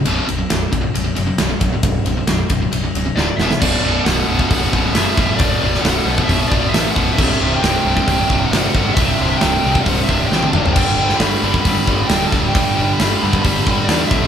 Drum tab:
CC |----------------|----------------|x---------------|----------------|
RD |x-x-x-x-x-x-x-x-|x-x-x-x-x-x-----|----------------|----------------|
HH |----------------|----------------|----o---o---o---|o---o---o---o---|
SD |----o-------o---|----o-------o-oo|----o-------o-o-|---oo-------o---|
T1 |----------------|----------------|----------------|----------------|
T2 |----------------|----------------|----------------|----------------|
FT |----------------|----------------|----------------|----------------|
BD |------o-------o-|o-----o---------|o------oo-o---o-|o------oo-o---o-|

CC |x---------------|----------------|x---------------|----------------|
RD |----------------|----------------|----------------|----------------|
HH |----o---o---o---|o---o---o-------|----o---o---o---|o---o---o---o---|
SD |----o-------o---|----o-------o---|---oo-------o-o-|----o-------o-o-|
T1 |----------------|-------------o--|----------------|----------------|
T2 |----------------|--------------o-|----------------|----------------|
FT |----------------|---------------o|----------------|----------------|
BD |o------oo-o---o-|o------oo-o-----|o------oo-o---o-|o------oo-o---o-|